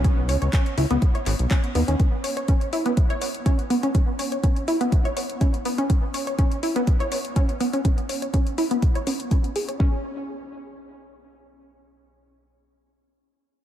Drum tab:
HH |x-oxxxoxxxoxxxox|x-oxxxoxxxoxxxox|x-oxxxoxxxoxxxox|x-oxxxoxxxoxxxox|
CP |----x-----x-x---|----------------|----------------|----------------|
BD |o---o---o---o---|o---o---o---o---|o---o---o---o---|o---o---o---o---|

HH |xxoxxxoxxxoxxxox|----------------|----------------|
CP |----------------|----------------|----------------|
BD |o---o---o---o---|o---------------|----------------|